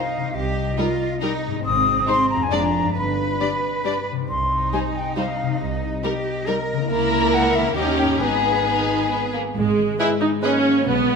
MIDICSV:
0, 0, Header, 1, 11, 480
1, 0, Start_track
1, 0, Tempo, 436364
1, 382, Time_signature, 3, 2, 24, 8
1, 8545, Tempo, 448430
1, 10465, Tempo, 434783
1, 12227, End_track
2, 0, Start_track
2, 0, Title_t, "Flute"
2, 0, Program_c, 0, 73
2, 0, Note_on_c, 0, 77, 55
2, 377, Note_on_c, 0, 75, 64
2, 393, Note_off_c, 0, 77, 0
2, 1800, Note_off_c, 0, 75, 0
2, 1807, Note_on_c, 0, 87, 82
2, 2277, Note_off_c, 0, 87, 0
2, 2291, Note_on_c, 0, 84, 81
2, 2520, Note_off_c, 0, 84, 0
2, 2527, Note_on_c, 0, 82, 72
2, 2669, Note_on_c, 0, 80, 67
2, 2686, Note_off_c, 0, 82, 0
2, 2788, Note_on_c, 0, 82, 66
2, 2805, Note_off_c, 0, 80, 0
2, 3259, Note_off_c, 0, 82, 0
2, 3266, Note_on_c, 0, 83, 61
2, 4457, Note_off_c, 0, 83, 0
2, 4714, Note_on_c, 0, 84, 61
2, 5166, Note_off_c, 0, 84, 0
2, 5200, Note_on_c, 0, 80, 68
2, 5266, Note_off_c, 0, 80, 0
2, 5452, Note_on_c, 0, 79, 49
2, 5670, Note_off_c, 0, 79, 0
2, 5677, Note_on_c, 0, 77, 53
2, 6152, Note_off_c, 0, 77, 0
2, 6168, Note_on_c, 0, 75, 61
2, 7566, Note_off_c, 0, 75, 0
2, 7591, Note_on_c, 0, 82, 76
2, 8069, Note_on_c, 0, 78, 82
2, 8085, Note_off_c, 0, 82, 0
2, 8303, Note_on_c, 0, 76, 71
2, 8319, Note_off_c, 0, 78, 0
2, 8520, Note_off_c, 0, 76, 0
2, 8527, Note_on_c, 0, 75, 71
2, 8766, Note_off_c, 0, 75, 0
2, 8772, Note_on_c, 0, 79, 62
2, 8836, Note_off_c, 0, 79, 0
2, 9014, Note_on_c, 0, 80, 60
2, 10199, Note_off_c, 0, 80, 0
2, 10941, Note_on_c, 0, 75, 43
2, 11028, Note_off_c, 0, 75, 0
2, 11436, Note_on_c, 0, 75, 39
2, 11521, Note_off_c, 0, 75, 0
2, 12227, End_track
3, 0, Start_track
3, 0, Title_t, "Violin section"
3, 0, Program_c, 1, 48
3, 864, Note_on_c, 1, 70, 47
3, 952, Note_off_c, 1, 70, 0
3, 1345, Note_on_c, 1, 70, 47
3, 1433, Note_off_c, 1, 70, 0
3, 2297, Note_on_c, 1, 72, 50
3, 2385, Note_off_c, 1, 72, 0
3, 2777, Note_on_c, 1, 74, 47
3, 2865, Note_off_c, 1, 74, 0
3, 3760, Note_on_c, 1, 74, 38
3, 3848, Note_off_c, 1, 74, 0
3, 4244, Note_on_c, 1, 74, 35
3, 4332, Note_off_c, 1, 74, 0
3, 5208, Note_on_c, 1, 72, 39
3, 5296, Note_off_c, 1, 72, 0
3, 5686, Note_on_c, 1, 72, 37
3, 5774, Note_off_c, 1, 72, 0
3, 6639, Note_on_c, 1, 70, 45
3, 6727, Note_off_c, 1, 70, 0
3, 7123, Note_on_c, 1, 70, 47
3, 7211, Note_off_c, 1, 70, 0
3, 7596, Note_on_c, 1, 70, 54
3, 8500, Note_off_c, 1, 70, 0
3, 8541, Note_on_c, 1, 67, 52
3, 9018, Note_off_c, 1, 67, 0
3, 9026, Note_on_c, 1, 68, 47
3, 10250, Note_off_c, 1, 68, 0
3, 10941, Note_on_c, 1, 75, 44
3, 11029, Note_off_c, 1, 75, 0
3, 11428, Note_on_c, 1, 75, 44
3, 11516, Note_off_c, 1, 75, 0
3, 12227, End_track
4, 0, Start_track
4, 0, Title_t, "Oboe"
4, 0, Program_c, 2, 68
4, 10937, Note_on_c, 2, 71, 39
4, 11112, Note_off_c, 2, 71, 0
4, 11418, Note_on_c, 2, 71, 38
4, 11592, Note_off_c, 2, 71, 0
4, 12227, End_track
5, 0, Start_track
5, 0, Title_t, "Cello section"
5, 0, Program_c, 3, 48
5, 0, Note_on_c, 3, 63, 46
5, 382, Note_on_c, 3, 67, 56
5, 383, Note_off_c, 3, 63, 0
5, 851, Note_off_c, 3, 67, 0
5, 858, Note_on_c, 3, 65, 55
5, 1327, Note_off_c, 3, 65, 0
5, 1337, Note_on_c, 3, 63, 56
5, 1802, Note_off_c, 3, 63, 0
5, 1809, Note_on_c, 3, 60, 62
5, 2752, Note_off_c, 3, 60, 0
5, 2769, Note_on_c, 3, 62, 52
5, 3249, Note_off_c, 3, 62, 0
5, 3255, Note_on_c, 3, 71, 54
5, 4452, Note_off_c, 3, 71, 0
5, 4721, Note_on_c, 3, 63, 46
5, 6598, Note_off_c, 3, 63, 0
5, 6643, Note_on_c, 3, 67, 53
5, 7110, Note_off_c, 3, 67, 0
5, 7120, Note_on_c, 3, 70, 55
5, 7580, Note_off_c, 3, 70, 0
5, 7594, Note_on_c, 3, 70, 68
5, 8524, Note_off_c, 3, 70, 0
5, 8541, Note_on_c, 3, 67, 54
5, 9008, Note_off_c, 3, 67, 0
5, 9015, Note_on_c, 3, 71, 51
5, 10200, Note_off_c, 3, 71, 0
5, 10464, Note_on_c, 3, 44, 60
5, 10844, Note_off_c, 3, 44, 0
5, 11902, Note_on_c, 3, 47, 56
5, 12227, Note_off_c, 3, 47, 0
5, 12227, End_track
6, 0, Start_track
6, 0, Title_t, "Violin section"
6, 0, Program_c, 4, 48
6, 857, Note_on_c, 4, 63, 44
6, 945, Note_off_c, 4, 63, 0
6, 1337, Note_on_c, 4, 63, 49
6, 1425, Note_off_c, 4, 63, 0
6, 2277, Note_on_c, 4, 63, 49
6, 2365, Note_off_c, 4, 63, 0
6, 2760, Note_on_c, 4, 62, 47
6, 2848, Note_off_c, 4, 62, 0
6, 3746, Note_on_c, 4, 62, 35
6, 3834, Note_off_c, 4, 62, 0
6, 4241, Note_on_c, 4, 62, 36
6, 4329, Note_off_c, 4, 62, 0
6, 5203, Note_on_c, 4, 63, 37
6, 5291, Note_off_c, 4, 63, 0
6, 5683, Note_on_c, 4, 63, 37
6, 5771, Note_off_c, 4, 63, 0
6, 6650, Note_on_c, 4, 63, 40
6, 6738, Note_off_c, 4, 63, 0
6, 7124, Note_on_c, 4, 63, 46
6, 7212, Note_off_c, 4, 63, 0
6, 7602, Note_on_c, 4, 64, 56
6, 8503, Note_off_c, 4, 64, 0
6, 8549, Note_on_c, 4, 63, 53
6, 9013, Note_off_c, 4, 63, 0
6, 9026, Note_on_c, 4, 63, 42
6, 9450, Note_off_c, 4, 63, 0
6, 9507, Note_on_c, 4, 63, 53
6, 9954, Note_off_c, 4, 63, 0
6, 9987, Note_on_c, 4, 59, 41
6, 10073, Note_off_c, 4, 59, 0
6, 10227, Note_on_c, 4, 58, 37
6, 10312, Note_off_c, 4, 58, 0
6, 10947, Note_on_c, 4, 68, 43
6, 10948, Note_on_c, 4, 71, 41
6, 11035, Note_off_c, 4, 68, 0
6, 11036, Note_off_c, 4, 71, 0
6, 11424, Note_on_c, 4, 71, 43
6, 11428, Note_on_c, 4, 68, 43
6, 11513, Note_off_c, 4, 71, 0
6, 11516, Note_off_c, 4, 68, 0
6, 12227, End_track
7, 0, Start_track
7, 0, Title_t, "Harp"
7, 0, Program_c, 5, 46
7, 0, Note_on_c, 5, 48, 38
7, 0, Note_on_c, 5, 55, 32
7, 0, Note_on_c, 5, 63, 32
7, 0, Note_on_c, 5, 72, 33
7, 172, Note_off_c, 5, 48, 0
7, 185, Note_on_c, 5, 48, 42
7, 222, Note_off_c, 5, 55, 0
7, 235, Note_on_c, 5, 55, 36
7, 272, Note_off_c, 5, 63, 0
7, 285, Note_on_c, 5, 63, 33
7, 333, Note_on_c, 5, 70, 36
7, 376, Note_off_c, 5, 72, 0
7, 1617, Note_on_c, 5, 44, 50
7, 1663, Note_on_c, 5, 56, 43
7, 1702, Note_off_c, 5, 63, 0
7, 1715, Note_on_c, 5, 63, 41
7, 1733, Note_off_c, 5, 48, 0
7, 1758, Note_off_c, 5, 55, 0
7, 1764, Note_on_c, 5, 72, 41
7, 1807, Note_off_c, 5, 70, 0
7, 2576, Note_on_c, 5, 41, 49
7, 2612, Note_off_c, 5, 56, 0
7, 2625, Note_on_c, 5, 56, 38
7, 2676, Note_on_c, 5, 62, 39
7, 2694, Note_off_c, 5, 44, 0
7, 2724, Note_on_c, 5, 74, 42
7, 2744, Note_off_c, 5, 63, 0
7, 2768, Note_off_c, 5, 72, 0
7, 3065, Note_on_c, 5, 43, 39
7, 3115, Note_on_c, 5, 55, 35
7, 3151, Note_off_c, 5, 62, 0
7, 3164, Note_on_c, 5, 62, 34
7, 3182, Note_off_c, 5, 41, 0
7, 3200, Note_off_c, 5, 74, 0
7, 3207, Note_off_c, 5, 56, 0
7, 3213, Note_on_c, 5, 74, 33
7, 4526, Note_on_c, 5, 48, 40
7, 4562, Note_off_c, 5, 55, 0
7, 4575, Note_on_c, 5, 55, 31
7, 4627, Note_on_c, 5, 63, 32
7, 4643, Note_off_c, 5, 43, 0
7, 4673, Note_on_c, 5, 72, 32
7, 4693, Note_off_c, 5, 62, 0
7, 4717, Note_off_c, 5, 74, 0
7, 5957, Note_off_c, 5, 48, 0
7, 5970, Note_on_c, 5, 48, 42
7, 6002, Note_off_c, 5, 55, 0
7, 6016, Note_on_c, 5, 55, 33
7, 6053, Note_off_c, 5, 63, 0
7, 6066, Note_on_c, 5, 63, 33
7, 6117, Note_on_c, 5, 70, 34
7, 6160, Note_off_c, 5, 72, 0
7, 7399, Note_on_c, 5, 49, 47
7, 7451, Note_on_c, 5, 58, 41
7, 7498, Note_on_c, 5, 64, 41
7, 7514, Note_off_c, 5, 48, 0
7, 7535, Note_off_c, 5, 70, 0
7, 7537, Note_off_c, 5, 55, 0
7, 7548, Note_on_c, 5, 70, 41
7, 7562, Note_off_c, 5, 63, 0
7, 8343, Note_on_c, 5, 51, 50
7, 8396, Note_on_c, 5, 61, 39
7, 8444, Note_on_c, 5, 63, 41
7, 8465, Note_off_c, 5, 49, 0
7, 8494, Note_on_c, 5, 67, 42
7, 8514, Note_off_c, 5, 64, 0
7, 8825, Note_on_c, 5, 44, 39
7, 8872, Note_on_c, 5, 59, 35
7, 8907, Note_off_c, 5, 63, 0
7, 8920, Note_on_c, 5, 63, 31
7, 8941, Note_off_c, 5, 51, 0
7, 8967, Note_off_c, 5, 61, 0
7, 8969, Note_off_c, 5, 58, 0
7, 8969, Note_on_c, 5, 68, 33
7, 9014, Note_off_c, 5, 67, 0
7, 9016, Note_off_c, 5, 70, 0
7, 10384, Note_off_c, 5, 44, 0
7, 10460, Note_on_c, 5, 44, 44
7, 10701, Note_on_c, 5, 51, 36
7, 10931, Note_off_c, 5, 59, 0
7, 10944, Note_on_c, 5, 59, 40
7, 11170, Note_off_c, 5, 63, 0
7, 11183, Note_on_c, 5, 63, 37
7, 11410, Note_off_c, 5, 68, 0
7, 11423, Note_on_c, 5, 68, 41
7, 11647, Note_off_c, 5, 63, 0
7, 11898, Note_on_c, 5, 47, 48
7, 11922, Note_off_c, 5, 44, 0
7, 11922, Note_off_c, 5, 51, 0
7, 12136, Note_on_c, 5, 56, 36
7, 12227, Note_off_c, 5, 47, 0
7, 12227, Note_off_c, 5, 56, 0
7, 12227, Note_off_c, 5, 59, 0
7, 12227, Note_off_c, 5, 68, 0
7, 12227, End_track
8, 0, Start_track
8, 0, Title_t, "Bassoon"
8, 0, Program_c, 6, 70
8, 10943, Note_on_c, 6, 56, 39
8, 11116, Note_off_c, 6, 56, 0
8, 11417, Note_on_c, 6, 56, 43
8, 11591, Note_off_c, 6, 56, 0
8, 12227, End_track
9, 0, Start_track
9, 0, Title_t, "French horn section"
9, 0, Program_c, 7, 60
9, 10947, Note_on_c, 7, 56, 53
9, 11392, Note_off_c, 7, 56, 0
9, 11425, Note_on_c, 7, 58, 53
9, 11905, Note_off_c, 7, 58, 0
9, 11919, Note_on_c, 7, 56, 53
9, 12227, Note_off_c, 7, 56, 0
9, 12227, End_track
10, 0, Start_track
10, 0, Title_t, "Viola section"
10, 0, Program_c, 8, 48
10, 858, Note_on_c, 8, 55, 42
10, 946, Note_off_c, 8, 55, 0
10, 1349, Note_on_c, 8, 55, 49
10, 1437, Note_off_c, 8, 55, 0
10, 2292, Note_on_c, 8, 56, 48
10, 2380, Note_off_c, 8, 56, 0
10, 2776, Note_on_c, 8, 56, 46
10, 2864, Note_off_c, 8, 56, 0
10, 3754, Note_on_c, 8, 55, 35
10, 3842, Note_off_c, 8, 55, 0
10, 4229, Note_on_c, 8, 55, 37
10, 4317, Note_off_c, 8, 55, 0
10, 5200, Note_on_c, 8, 55, 36
10, 5288, Note_off_c, 8, 55, 0
10, 5684, Note_on_c, 8, 55, 39
10, 5772, Note_off_c, 8, 55, 0
10, 6644, Note_on_c, 8, 55, 40
10, 6732, Note_off_c, 8, 55, 0
10, 7127, Note_on_c, 8, 55, 45
10, 7215, Note_off_c, 8, 55, 0
10, 7589, Note_on_c, 8, 58, 55
10, 8497, Note_off_c, 8, 58, 0
10, 8547, Note_on_c, 8, 61, 54
10, 9011, Note_off_c, 8, 61, 0
10, 9024, Note_on_c, 8, 59, 43
10, 10249, Note_off_c, 8, 59, 0
10, 10469, Note_on_c, 8, 56, 63
10, 10914, Note_off_c, 8, 56, 0
10, 10948, Note_on_c, 8, 64, 66
10, 11037, Note_off_c, 8, 64, 0
10, 11179, Note_on_c, 8, 63, 55
10, 11267, Note_off_c, 8, 63, 0
10, 11419, Note_on_c, 8, 61, 65
10, 11892, Note_off_c, 8, 61, 0
10, 11906, Note_on_c, 8, 59, 62
10, 12227, Note_off_c, 8, 59, 0
10, 12227, End_track
11, 0, Start_track
11, 0, Title_t, "Double bass section"
11, 0, Program_c, 10, 48
11, 373, Note_on_c, 10, 36, 53
11, 776, Note_off_c, 10, 36, 0
11, 1808, Note_on_c, 10, 32, 61
11, 2207, Note_off_c, 10, 32, 0
11, 2767, Note_on_c, 10, 29, 49
11, 3176, Note_off_c, 10, 29, 0
11, 3255, Note_on_c, 10, 31, 50
11, 3666, Note_off_c, 10, 31, 0
11, 4714, Note_on_c, 10, 36, 48
11, 5120, Note_off_c, 10, 36, 0
11, 6163, Note_on_c, 10, 36, 52
11, 6562, Note_off_c, 10, 36, 0
11, 7589, Note_on_c, 10, 37, 57
11, 8497, Note_off_c, 10, 37, 0
11, 8540, Note_on_c, 10, 39, 52
11, 9008, Note_off_c, 10, 39, 0
11, 9018, Note_on_c, 10, 32, 47
11, 10246, Note_off_c, 10, 32, 0
11, 10454, Note_on_c, 10, 32, 60
11, 10838, Note_off_c, 10, 32, 0
11, 11900, Note_on_c, 10, 35, 55
11, 12227, Note_off_c, 10, 35, 0
11, 12227, End_track
0, 0, End_of_file